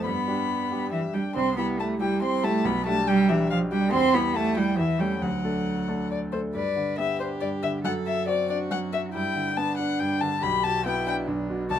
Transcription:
0.05 G2 B3 B5
0.28 G3 D4 G4
0.71 G3 D4 G4
0.92 E3 E5
1.14 G3 D4 G4 G5
1.35 C2 C4 C6
1.57 G3 B3 E4 G4 B5
1.79 A3 A5
2.00 G3 E4 G4 G5
2.22 C4 C6
2.43 G3 A3 E4 G4 A5
2.65 B1 B3 B5
2.86 G3 A3 D4 G4 A5
3.08 G3 G5
3.29 E3 G3 D4 G4 E5
3.50 F3 F5
3.71 G3 D4 G4 G5
3.93 E2 C4 C6
4.14 G3 B3 E4 G4 B5
4.36 A3 A5
4.57 G3 E4 G4 G5
4.78 E2 E3 E5
4.99 G3 A3 C#4 G4 G5
5.21 D2 F#3 F#5
5.44 A3 D4 A4
5.88 A3 D4 A4
6.11 D5
6.32 A3 D4 A4 C5
6.54 G2 B4 D5
6.76 D3
6.98 B3 G4 E5
7.20 D4 C5
7.41 G2 D5
7.63 D3 E5
7.84 F#2 A4 F#5
8.06 F#3 E5
8.28 C4 F#4 D5
8.49 D4 D5
8.71 F#2 F#5
8.93 F#3 E5
9.13 G2 E4 G5
9.35 D3
9.56 B3 D4 A5
9.78 D4 F#5
9.99 G2 G5
10.21 D3 A5
10.43 B1 G4 B5
10.64 B2 A5
10.85 B3 E4 G5
11.06 D4 G5
11.27 B1 D4
11.50 B2
11.70 C2 F#4 A5

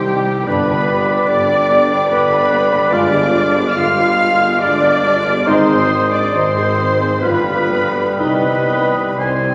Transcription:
Already playing: C2 C3 D#3 G3 C4 D#4 G4 C5 D#5 G5 C6 D#6
0.06 G3 C4 D#4
0.26 G3 C4 G4
0.46 G1 G2 G3 B3 D4 G4 B4 D5 B5
0.68 D3 D4 B4
0.88 B3 G4
1.08 D4 B4 D5
1.28 G1 B3 D4 G4 D5 D6
1.49 D4 B4 G5
1.69 B3 G4 D6
1.89 D4 B4 G5
2.09 G1 B3 G4 B4 D5 B5
2.30 D4 G4 B4
2.50 B3 D4 G4
2.71 D3 D4 B4
2.90 G1 G2 G#3 D4 F4 D5 F5 D6
3.12 D3 B3 G4
3.34 G#3 F4 G#4
3.55 B3 G4 B4
3.75 G1 G#3 F4 F5 F6
3.97 B3 G4 G#5
4.18 G#3 F4 B5
4.40 B3 G4 G#5
4.60 G1 G#3 D4 F4 B4 D5 D6
4.83 B3 G4 G#4
5.05 G#3 F4
5.26 D3 B3 G4
5.47 G#1 G#2 G#3 C4 D#4 C5 D#5 C6
5.70 D#3 C4 G#4
5.91 G#3 D#4 G#4
6.11 C4 D4 G#4 C5 D5 D6
6.33 G#1 G#3 C4 D#4 C5 D#5 C6
6.56 C4 G#4 G#5
6.78 G#3 D#4 C6
7.00 C4 G#4 G#5
7.22 G1 G2 F3 G3 B3 F4 B4 F5 B5
7.46 D3 G3 G4
7.70 F3 F4 G4
7.95 G3 G4 D5
8.19 C2 C3 D#3 G3 B3 D#4 B4 D#5 B5
8.44 G3 C4
8.69 D#3 D#4 G4
8.94 G3 C4 D#5
9.19 C2 D#3 C4 D#4 G4 C5 G#5 C6
9.43 G3 C4 G5

